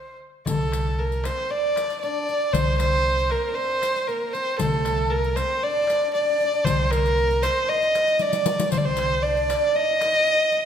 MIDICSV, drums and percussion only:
0, 0, Header, 1, 3, 480
1, 0, Start_track
1, 0, Tempo, 515464
1, 437, Time_signature, 4, 2, 24, 8
1, 9920, End_track
2, 0, Start_track
2, 0, Title_t, "Darbuka"
2, 427, Note_on_c, 9, 64, 81
2, 520, Note_off_c, 9, 64, 0
2, 671, Note_on_c, 9, 63, 61
2, 764, Note_off_c, 9, 63, 0
2, 910, Note_on_c, 9, 62, 27
2, 1003, Note_off_c, 9, 62, 0
2, 1041, Note_on_c, 9, 62, 25
2, 1135, Note_off_c, 9, 62, 0
2, 1152, Note_on_c, 9, 63, 69
2, 1245, Note_off_c, 9, 63, 0
2, 1525, Note_on_c, 9, 62, 26
2, 1618, Note_off_c, 9, 62, 0
2, 1638, Note_on_c, 9, 63, 66
2, 1731, Note_off_c, 9, 63, 0
2, 1877, Note_on_c, 9, 62, 24
2, 1970, Note_off_c, 9, 62, 0
2, 2124, Note_on_c, 9, 62, 24
2, 2217, Note_off_c, 9, 62, 0
2, 2361, Note_on_c, 9, 64, 95
2, 2454, Note_off_c, 9, 64, 0
2, 2602, Note_on_c, 9, 63, 73
2, 2695, Note_off_c, 9, 63, 0
2, 2724, Note_on_c, 9, 62, 24
2, 2817, Note_off_c, 9, 62, 0
2, 2835, Note_on_c, 9, 62, 26
2, 2928, Note_off_c, 9, 62, 0
2, 2959, Note_on_c, 9, 62, 23
2, 3052, Note_off_c, 9, 62, 0
2, 3070, Note_on_c, 9, 63, 67
2, 3163, Note_off_c, 9, 63, 0
2, 3442, Note_on_c, 9, 62, 26
2, 3535, Note_off_c, 9, 62, 0
2, 3556, Note_on_c, 9, 63, 67
2, 3649, Note_off_c, 9, 63, 0
2, 3800, Note_on_c, 9, 62, 27
2, 3893, Note_off_c, 9, 62, 0
2, 4039, Note_on_c, 9, 62, 28
2, 4132, Note_off_c, 9, 62, 0
2, 4279, Note_on_c, 9, 64, 82
2, 4373, Note_off_c, 9, 64, 0
2, 4516, Note_on_c, 9, 63, 68
2, 4609, Note_off_c, 9, 63, 0
2, 4630, Note_on_c, 9, 62, 27
2, 4723, Note_off_c, 9, 62, 0
2, 4756, Note_on_c, 9, 62, 30
2, 4849, Note_off_c, 9, 62, 0
2, 4874, Note_on_c, 9, 62, 27
2, 4967, Note_off_c, 9, 62, 0
2, 4990, Note_on_c, 9, 63, 73
2, 5083, Note_off_c, 9, 63, 0
2, 5353, Note_on_c, 9, 62, 27
2, 5446, Note_off_c, 9, 62, 0
2, 5468, Note_on_c, 9, 63, 67
2, 5561, Note_off_c, 9, 63, 0
2, 5716, Note_on_c, 9, 62, 23
2, 5809, Note_off_c, 9, 62, 0
2, 5951, Note_on_c, 9, 62, 23
2, 6044, Note_off_c, 9, 62, 0
2, 6188, Note_on_c, 9, 64, 93
2, 6281, Note_off_c, 9, 64, 0
2, 6433, Note_on_c, 9, 63, 77
2, 6526, Note_off_c, 9, 63, 0
2, 6558, Note_on_c, 9, 62, 24
2, 6651, Note_off_c, 9, 62, 0
2, 6678, Note_on_c, 9, 62, 27
2, 6771, Note_off_c, 9, 62, 0
2, 6800, Note_on_c, 9, 62, 24
2, 6893, Note_off_c, 9, 62, 0
2, 6926, Note_on_c, 9, 63, 80
2, 7019, Note_off_c, 9, 63, 0
2, 7161, Note_on_c, 9, 62, 28
2, 7254, Note_off_c, 9, 62, 0
2, 7283, Note_on_c, 9, 62, 27
2, 7376, Note_off_c, 9, 62, 0
2, 7403, Note_on_c, 9, 63, 72
2, 7496, Note_off_c, 9, 63, 0
2, 7528, Note_on_c, 9, 62, 25
2, 7621, Note_off_c, 9, 62, 0
2, 7650, Note_on_c, 9, 62, 28
2, 7743, Note_off_c, 9, 62, 0
2, 8120, Note_on_c, 9, 64, 88
2, 8213, Note_off_c, 9, 64, 0
2, 8366, Note_on_c, 9, 63, 79
2, 8459, Note_off_c, 9, 63, 0
2, 8485, Note_on_c, 9, 62, 25
2, 8578, Note_off_c, 9, 62, 0
2, 8604, Note_on_c, 9, 62, 27
2, 8697, Note_off_c, 9, 62, 0
2, 8725, Note_on_c, 9, 62, 25
2, 8818, Note_off_c, 9, 62, 0
2, 8846, Note_on_c, 9, 63, 82
2, 8939, Note_off_c, 9, 63, 0
2, 9200, Note_on_c, 9, 62, 28
2, 9293, Note_off_c, 9, 62, 0
2, 9318, Note_on_c, 9, 63, 71
2, 9411, Note_off_c, 9, 63, 0
2, 9567, Note_on_c, 9, 62, 27
2, 9660, Note_off_c, 9, 62, 0
2, 9804, Note_on_c, 9, 62, 25
2, 9897, Note_off_c, 9, 62, 0
2, 9920, End_track
3, 0, Start_track
3, 0, Title_t, "Riq"
3, 440, Note_on_c, 9, 54, 59
3, 533, Note_off_c, 9, 54, 0
3, 683, Note_on_c, 9, 54, 41
3, 776, Note_off_c, 9, 54, 0
3, 1044, Note_on_c, 9, 54, 17
3, 1137, Note_off_c, 9, 54, 0
3, 1167, Note_on_c, 9, 54, 47
3, 1260, Note_off_c, 9, 54, 0
3, 1650, Note_on_c, 9, 54, 44
3, 1743, Note_off_c, 9, 54, 0
3, 1771, Note_on_c, 9, 54, 17
3, 1864, Note_off_c, 9, 54, 0
3, 1893, Note_on_c, 9, 54, 14
3, 1986, Note_off_c, 9, 54, 0
3, 2130, Note_on_c, 9, 54, 17
3, 2224, Note_off_c, 9, 54, 0
3, 2369, Note_on_c, 9, 54, 56
3, 2462, Note_off_c, 9, 54, 0
3, 2605, Note_on_c, 9, 54, 47
3, 2698, Note_off_c, 9, 54, 0
3, 2972, Note_on_c, 9, 54, 17
3, 3065, Note_off_c, 9, 54, 0
3, 3563, Note_on_c, 9, 54, 46
3, 3656, Note_off_c, 9, 54, 0
3, 3690, Note_on_c, 9, 54, 18
3, 3783, Note_off_c, 9, 54, 0
3, 3806, Note_on_c, 9, 54, 16
3, 3900, Note_off_c, 9, 54, 0
3, 4047, Note_on_c, 9, 54, 23
3, 4141, Note_off_c, 9, 54, 0
3, 4278, Note_on_c, 9, 54, 68
3, 4371, Note_off_c, 9, 54, 0
3, 4521, Note_on_c, 9, 54, 38
3, 4614, Note_off_c, 9, 54, 0
3, 4883, Note_on_c, 9, 54, 20
3, 4976, Note_off_c, 9, 54, 0
3, 5000, Note_on_c, 9, 54, 43
3, 5093, Note_off_c, 9, 54, 0
3, 5492, Note_on_c, 9, 54, 42
3, 5585, Note_off_c, 9, 54, 0
3, 5727, Note_on_c, 9, 54, 17
3, 5820, Note_off_c, 9, 54, 0
3, 5964, Note_on_c, 9, 54, 19
3, 6057, Note_off_c, 9, 54, 0
3, 6208, Note_on_c, 9, 54, 59
3, 6301, Note_off_c, 9, 54, 0
3, 6449, Note_on_c, 9, 54, 44
3, 6542, Note_off_c, 9, 54, 0
3, 6572, Note_on_c, 9, 54, 19
3, 6665, Note_off_c, 9, 54, 0
3, 6685, Note_on_c, 9, 54, 17
3, 6778, Note_off_c, 9, 54, 0
3, 6803, Note_on_c, 9, 54, 18
3, 6896, Note_off_c, 9, 54, 0
3, 6919, Note_on_c, 9, 54, 47
3, 7012, Note_off_c, 9, 54, 0
3, 7286, Note_on_c, 9, 54, 17
3, 7379, Note_off_c, 9, 54, 0
3, 7405, Note_on_c, 9, 54, 45
3, 7498, Note_off_c, 9, 54, 0
3, 7521, Note_on_c, 9, 54, 18
3, 7614, Note_off_c, 9, 54, 0
3, 7630, Note_on_c, 9, 54, 47
3, 7723, Note_off_c, 9, 54, 0
3, 7755, Note_on_c, 9, 54, 60
3, 7848, Note_off_c, 9, 54, 0
3, 7875, Note_on_c, 9, 54, 84
3, 7968, Note_off_c, 9, 54, 0
3, 8003, Note_on_c, 9, 54, 80
3, 8096, Note_off_c, 9, 54, 0
3, 8117, Note_on_c, 9, 54, 58
3, 8210, Note_off_c, 9, 54, 0
3, 8350, Note_on_c, 9, 54, 46
3, 8443, Note_off_c, 9, 54, 0
3, 8726, Note_on_c, 9, 54, 18
3, 8819, Note_off_c, 9, 54, 0
3, 8844, Note_on_c, 9, 54, 50
3, 8937, Note_off_c, 9, 54, 0
3, 9325, Note_on_c, 9, 54, 47
3, 9418, Note_off_c, 9, 54, 0
3, 9440, Note_on_c, 9, 54, 19
3, 9533, Note_off_c, 9, 54, 0
3, 9558, Note_on_c, 9, 54, 15
3, 9651, Note_off_c, 9, 54, 0
3, 9795, Note_on_c, 9, 54, 20
3, 9888, Note_off_c, 9, 54, 0
3, 9920, End_track
0, 0, End_of_file